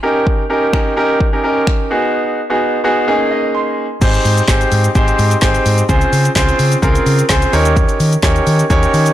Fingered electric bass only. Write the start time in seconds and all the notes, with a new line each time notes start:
4.02 G#1
4.25 G#2
4.48 G#1
4.72 G#2
4.95 G#1
5.19 G#2
5.42 G#1
5.66 G#2
5.89 C#2
6.13 C#3
6.36 C#2
6.59 C#3
6.83 C#2
7.06 C#3
7.30 C#2
7.53 D#2
8.00 D#3
8.23 D#2
8.47 D#3
8.70 D#2
8.94 D#3